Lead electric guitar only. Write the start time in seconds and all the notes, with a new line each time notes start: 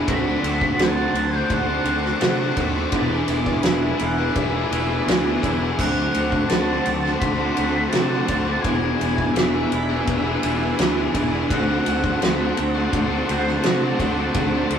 0.09 B5
0.82 A5
1.35 G5
1.53 F#5
2.60 E5
2.94 D5
3.99 F#5
4.33 E5
5.79 F#5
6.49 A5
7.20 B5
7.90 A5
8.61 G#5
9.34 E5
11.49 F#5
12.21 E5
12.76 D5
12.93 D5
13.29 C5
13.66 D5
14.00 D5